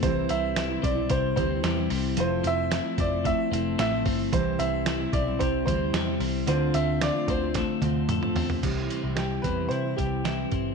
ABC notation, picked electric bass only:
X:1
M:4/4
L:1/16
Q:1/4=112
K:C
V:1 name="Picked electric bass" clef=bass
C,,2 C,,4 B,,,2 C,,2 D,,2 E,,2 C,,2 | F,,,2 F,,,3 z F,,,3 z F,,,2 A,,,2 G,,,2 | C,,2 C,,4 B,,,2 C,,2 D,,2 E,,2 C,,2 | D,,2 D,,3 z D,,3 z D,,2 F,,2 E,,2 |
C,,2 z C,,3 E,,2 C,2 C,,4 G,,,2 |]